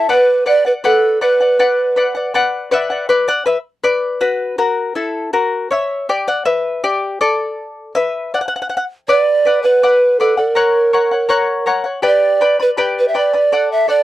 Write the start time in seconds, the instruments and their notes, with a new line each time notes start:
0.09 charango B4 D5 F#5, pan flute B4
0.46 charango B4 D5 F#5, pan flute D5
0.65 pan flute B4, charango D5 F#5
0.84 pan flute A4, charango B4 D5 F#5
1.21 charango B4 D5 F#5, pan flute B4
1.40 charango D5 F#5
1.59 charango B4 D5 F#5
1.96 charango B4 D5 F#5
2.15 charango D5 F#5
2.34 charango B4 D5 F#5
2.71 charango B4 D5 E5 F#5
2.90 charango D5 F#5
3.09 charango B4 D5
3.28 charango D5 F#5
3.46 charango B4 E5
3.84 charango B4 D5
4.21 charango F#4 B4
4.58 charango F#4 A#4
4.95 charango E4 A4
5.33 charango F#4 A#4
5.71 charango C#5 E5
6.09 charango G4 D5
6.28 charango D5 F#5
6.45 charango B4 E5
6.84 charango G4 D5
7.21 charango A4 D5
7.95 charango B4 E5
8.34 charango D5 F#5
8.41 charango F#5
8.48 charango F#5
8.56 charango F#5
8.62 charango F#5
8.70 charango F#5
8.77 charango F#5
9.08 charango B4 D5 F#5, pan flute D5
9.45 charango B4 D5 F#5
9.63 pan flute B4, charango D5 F#5
9.83 charango B4 D5 F#5
10.20 pan flute A4, charango B4 D5 F#5
10.37 pan flute A#4, charango D5 F#5
10.55 charango A#4 C#5 F#5
10.93 charango A#4 C#5 F#5
11.11 charango C#5 F#5
11.29 charango A#4 C#5 F#5
11.66 charango A#4 C#5 F#5
11.84 charango C#5 F#5
12.02 charango G4 B4 D5 G5 B5
12.07 pan flute D5
12.41 charango B4 D5 G5 B5
12.60 charango B4 D5 B5, pan flute B4
12.77 charango G4 B4 D5 G5 B5
12.99 pan flute B4
13.08 pan flute E5
13.14 charango B4 D5 G5 B5, pan flute D5
13.33 charango B4 D5 B5
13.52 charango A4 D5 F#5
13.72 pan flute E5
13.88 charango A4 D5 F#5, pan flute D5